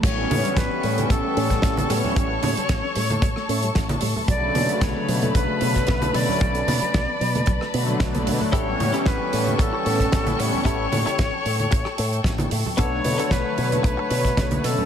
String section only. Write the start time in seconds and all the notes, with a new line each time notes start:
0.04 A4 G5 C#6
2.17 A5
4.29 B4 B5
8.53 A4 G5 C#6
12.78 B4 A5